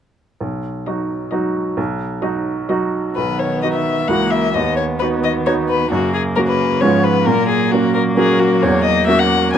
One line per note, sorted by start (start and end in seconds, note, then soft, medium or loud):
0.41 0.86 B1 soft
0.87 1.29 F#3 soft
0.87 1.29 D#4 soft
0.87 1.29 F#4 soft
0.87 1.21 D#5 soft
1.31 1.73 F#3 soft
1.31 1.73 D#4 soft
1.31 1.74 F#4 soft
1.31 1.65 D#5 soft
1.77 2.22 B1 soft
2.22 2.65 F#3 soft
2.22 2.65 D#4 soft
2.22 2.66 F#4 soft
2.22 2.57 D#5 soft
2.69 3.13 F#3 soft
2.69 3.13 D#4 soft
2.69 3.13 F#4 soft
2.69 3.05 D#5 soft
3.16 3.62 B1 soft
3.16 4.10 D#3 soft
3.16 4.10 B3 soft
3.16 3.40 B4 medium
3.39 3.62 C#5 soft
3.62 4.05 F#3 soft
3.62 4.05 D#4 soft
3.62 4.06 F#4 soft
3.62 3.67 D#5 medium
3.73 4.09 E5 medium
4.08 4.53 C#2 soft
4.08 4.56 E3 soft
4.08 4.55 A#3 soft
4.08 4.51 A#3 soft
4.08 4.51 E4 soft
4.08 4.51 F#4 soft
4.08 4.32 F#5 medium
4.30 4.55 E5 medium
4.54 4.99 D#2 soft
4.54 5.92 D#3 soft
4.54 5.89 B3 soft
4.54 4.76 D#5 medium
4.76 4.84 C#5 medium
4.99 5.42 B3 soft
4.99 5.43 D#4 soft
4.99 5.43 F#4 soft
4.99 5.07 B4 medium
5.24 5.32 D#5 medium
5.46 5.88 B3 soft
5.46 5.88 D#4 soft
5.46 5.88 F#4 soft
5.46 5.54 C#5 medium
5.69 5.91 B4 medium
5.91 6.35 F#2 soft
5.91 6.82 C#3 soft
5.91 6.82 A#3 soft
5.91 6.13 F#4 medium
6.14 6.22 G#4 medium
6.36 6.78 A#3 soft
6.36 6.78 C#4 soft
6.36 6.78 F#4 soft
6.36 6.40 A#4 medium
6.47 6.82 B4 medium
6.81 7.25 G#2 medium
6.81 7.29 F3 soft
6.81 7.25 B3 soft
6.81 7.23 B3 soft
6.81 7.23 C#4 soft
6.81 7.23 F4 soft
6.81 7.05 C#5 medium
7.04 7.27 B4 medium
7.26 7.71 A#2 soft
7.26 9.58 F#3 soft
7.26 9.55 A#3 medium
7.26 7.48 A#4 medium
7.48 7.73 G#4 medium
7.72 8.14 A#3 soft
7.72 8.14 C#4 soft
7.72 7.94 F#4 medium
7.72 8.15 F#4 soft
7.94 8.02 A#4 medium
8.17 8.59 A#3 soft
8.17 8.59 C#4 soft
8.17 8.59 F#4 soft
8.17 8.41 G#4 medium
8.39 8.63 F#4 medium
8.62 9.07 E2 medium
8.62 8.83 C#5 medium
8.84 9.06 D#5 medium
9.07 9.49 A#3 soft
9.07 9.50 C#4 soft
9.07 9.50 F#4 soft
9.07 9.20 E5 medium
9.19 9.53 F#5 medium
9.53 9.58 D#2 medium
9.53 9.58 B3 medium
9.53 9.58 B3 soft
9.53 9.58 G#5 medium